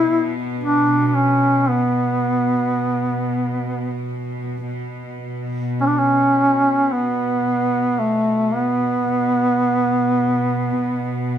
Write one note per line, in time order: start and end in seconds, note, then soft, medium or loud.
0.00 4.64 B2 soft
0.00 0.32 E4 medium
0.60 1.07 D4 medium
1.07 1.16 D4 medium
1.14 1.71 C#4 medium
1.69 4.05 B3 medium
4.65 11.38 B2 soft
5.81 5.88 C#4 medium
5.86 5.99 D4 medium
5.97 6.94 C#4 medium
6.92 8.00 B3 medium
7.99 8.55 A3 medium
8.53 11.38 B3 medium